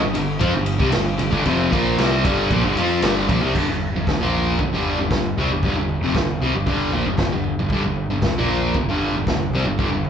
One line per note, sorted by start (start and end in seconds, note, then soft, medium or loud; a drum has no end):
0.02 0.15 G1 medium
0.02 0.13 G2 medium
0.02 0.13 D3 medium
0.14 0.40 G1 medium
0.14 0.35 G2 medium
0.14 0.36 D3 medium
0.14 ride medium
0.39 0.53 F2 loud
0.39 0.52 F3 loud
0.39 0.53 C4 medium
0.39 kick loud
0.39 ride loud
0.55 0.78 G1 medium
0.55 0.75 G2 medium
0.55 0.75 D3 medium
0.66 ride medium
0.79 0.92 C2 loud
0.79 0.92 C3 loud
0.79 0.93 G3 medium
0.79 kick loud
0.92 1.19 G1 medium
0.92 1.14 G2 medium
0.92 1.14 D3 medium
0.92 snare loud
0.92 ride loud
1.18 1.31 G1 medium
1.18 1.30 G2 medium
1.18 1.31 D3 medium
1.18 ride medium
1.31 1.44 G1 loud
1.31 1.44 G2 medium
1.31 1.44 D3 loud
1.31 kick loud
1.45 1.70 F1 loud
1.45 1.71 F2 loud
1.45 1.71 C3 loud
1.45 1.71 F3 loud
1.45 kick loud
1.45 ride loud
1.71 1.96 A#1 loud
1.71 1.97 A#2 medium
1.71 1.97 F3 medium
1.71 1.97 A#3 loud
1.71 kick loud
1.71 ride medium
1.98 2.22 C2 loud
1.98 2.23 C3 medium
1.98 2.24 G3 medium
1.98 2.24 C4 loud
1.98 snare loud
1.98 ride loud
2.24 2.48 G1 medium
2.24 2.50 G2 medium
2.24 2.50 D3 medium
2.24 2.50 G3 loud
2.24 kick loud
2.24 ride medium
2.50 2.62 A#1 loud
2.50 2.63 A#2 medium
2.50 2.63 F3 loud
2.50 kick loud
2.50 ride loud
2.63 2.75 G1 loud
2.63 2.76 G2 loud
2.63 2.76 D3 loud
2.75 3.00 F2 medium
2.75 3.02 F3 medium
2.75 3.03 C4 loud
2.75 ride medium
2.80 3.03 F4 loud
3.02 3.26 G1 medium
3.02 3.27 G2 medium
3.02 3.28 D3 loud
3.02 3.28 G3 loud
3.02 snare loud
3.02 ride loud
3.28 3.40 A#1 loud
3.28 3.41 A#2 medium
3.28 3.41 F3 loud
3.28 kick loud
3.28 ride medium
3.42 3.53 C2 loud
3.42 3.54 C3 loud
3.42 3.54 G3 loud
3.55 3.64 G1 medium
3.55 3.67 G2 medium
3.55 3.67 D3 loud
3.55 kick loud
3.55 floor tom medium
3.55 crash loud
3.65 3.90 G1 medium
3.69 3.89 G2 medium
3.69 3.89 D3 medium
3.81 floor tom medium
3.92 4.05 G1 medium
3.96 4.08 G2 medium
3.96 4.08 D3 medium
4.07 4.19 G1 medium
4.07 4.21 G2 medium
4.07 4.21 D3 medium
4.07 kick loud
4.07 snare loud
4.07 floor tom medium
4.20 4.56 A#1 medium
4.20 4.58 A#2 medium
4.20 4.59 F3 medium
4.20 4.59 A#3 loud
4.34 floor tom medium
4.59 4.71 G1 medium
4.59 4.72 G2 medium
4.59 4.73 D3 medium
4.59 kick loud
4.59 floor tom medium
4.72 4.96 G1 loud
4.72 4.97 G2 medium
4.72 4.98 D3 medium
4.72 4.98 G3 loud
4.85 floor tom medium
4.97 5.09 G1 medium
4.97 5.12 G2 medium
5.01 5.12 D3 medium
5.10 5.35 G1 medium
5.10 5.33 G2 medium
5.10 5.33 D3 medium
5.10 kick loud
5.10 snare loud
5.10 floor tom medium
5.36 5.49 C2 medium
5.36 5.50 C3 medium
5.36 5.50 G3 loud
5.36 floor tom medium
5.50 5.62 G1 medium
5.50 5.63 G2 medium
5.50 5.64 D3 medium
5.62 5.75 G1 medium
5.62 5.76 G2 medium
5.62 5.76 D3 loud
5.62 kick loud
5.62 floor tom medium
5.76 6.00 G1 medium
5.76 5.97 G2 medium
5.76 5.98 D3 medium
5.89 floor tom medium
6.00 6.13 F1 medium
6.00 6.15 F2 medium
6.00 6.15 C3 loud
6.14 6.39 G1 medium
6.14 6.36 G2 medium
6.14 6.37 D3 medium
6.14 kick loud
6.14 snare loud
6.14 floor tom medium
6.40 6.51 C2 medium
6.40 6.54 C3 medium
6.40 6.54 G3 medium
6.40 floor tom medium
6.52 6.65 G1 medium
6.52 6.65 G2 medium
6.56 6.67 D3 medium
6.66 6.90 G1 medium
6.66 6.92 G2 medium
6.66 6.93 D3 medium
6.66 6.93 G3 loud
6.66 kick loud
6.66 floor tom medium
6.90 7.03 A#1 medium
6.90 7.05 A#2 medium
6.90 floor tom medium
6.94 7.06 F3 loud
7.03 7.17 G1 medium
7.03 7.18 G2 medium
7.03 7.18 D3 medium
7.17 7.30 G1 medium
7.17 7.32 G2 medium
7.17 7.31 D3 medium
7.17 kick loud
7.17 snare loud
7.17 floor tom medium
7.31 7.56 G1 medium
7.31 7.53 G2 medium
7.31 7.53 D3 medium
7.43 floor tom medium
7.58 7.69 G1 medium
7.58 7.71 G2 medium
7.58 7.71 D3 medium
7.69 7.82 G1 loud
7.69 7.84 G2 medium
7.69 7.84 D3 loud
7.69 kick loud
7.69 floor tom medium
7.83 8.08 G1 medium
7.83 8.06 G2 medium
7.83 8.06 D3 medium
7.95 floor tom medium
8.09 8.21 G1 medium
8.09 8.24 G2 medium
8.09 8.23 D3 medium
8.22 8.34 G1 medium
8.22 8.37 G2 medium
8.22 8.37 D3 medium
8.22 kick loud
8.22 snare loud
8.22 floor tom medium
8.35 8.72 A#1 loud
8.35 8.75 A#2 medium
8.35 8.75 F3 medium
8.35 8.76 A#3 medium
8.48 floor tom medium
8.74 8.85 G1 medium
8.74 8.88 G2 medium
8.74 8.88 D3 medium
8.74 kick loud
8.74 floor tom medium
8.86 9.11 G1 medium
8.86 9.14 G2 loud
8.86 9.14 D3 loud
8.90 9.14 G3 loud
9.01 floor tom medium
9.11 9.25 G1 medium
9.16 9.28 G2 medium
9.16 9.28 D3 medium
9.26 9.49 G1 medium
9.26 9.49 G2 medium
9.26 9.49 D3 medium
9.26 kick loud
9.26 snare loud
9.26 floor tom medium
9.50 9.63 C2 loud
9.50 floor tom medium
9.55 9.66 C3 medium
9.55 9.66 G3 loud
9.64 9.77 G1 medium
9.64 9.78 G2 medium
9.64 9.79 D3 medium
9.79 9.90 G1 medium
9.79 9.90 G2 medium
9.79 9.91 D3 loud
9.79 kick loud
9.79 floor tom medium
9.90 10.10 G1 medium
9.90 10.10 G2 medium
9.90 10.10 D3 medium
10.04 floor tom medium